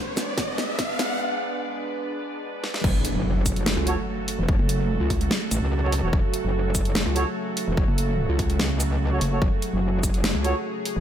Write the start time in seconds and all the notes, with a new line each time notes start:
Already playing: G#3 B3 D4 B4 D5, riser
0.17 snare, closed hi-hat, shaker
0.38 kick, snare, closed hi-hat
0.58 snare, closed hi-hat
0.79 kick, snare, closed hi-hat
0.99 snare, open hi-hat
2.64 snare
2.74 snare
2.84 F#1 C#3 F#3 A3 F#4 A4, kick, crash, impact
3.05 closed hi-hat
3.15 F#1
3.46 kick, closed hi-hat, shaker
3.56 closed hi-hat
3.66 snare
3.77 C#2
3.87 F#4 A4 C#5, closed hi-hat
4.28 open hi-hat
4.39 E1
4.49 F#1, kick
4.59 F#1
4.69 closed hi-hat
5.00 C#2
5.10 kick, open hi-hat
5.21 closed hi-hat
5.31 snare
5.51 A1, closed hi-hat, shaker
5.62 C#2
5.83 F#4 A4 C#5
5.92 open hi-hat
6.03 E1 F#4 A4 C#5
6.13 F#1, kick
6.34 closed hi-hat
6.44 F#1
6.75 kick, closed hi-hat, shaker
6.85 closed hi-hat
6.95 snare
7.06 C#2
7.16 F#4 A4 C#5, closed hi-hat
7.57 open hi-hat
7.68 E1
7.77 F#1, kick
7.88 F#1
7.98 closed hi-hat
8.29 C#2
8.39 kick, open hi-hat
8.50 closed hi-hat
8.60 C#2, snare
8.80 closed hi-hat, shaker
9.11 F#4 A4 C#5
9.21 F#1, open hi-hat
9.32 F#4 A4 C#5
9.42 F#1 G#4, kick
9.62 closed hi-hat
9.73 F#1
10.03 kick, closed hi-hat, shaker
10.14 closed hi-hat
10.24 snare
10.35 C#2
10.44 F#4 A4 C#5, closed hi-hat
10.85 open hi-hat
10.96 E1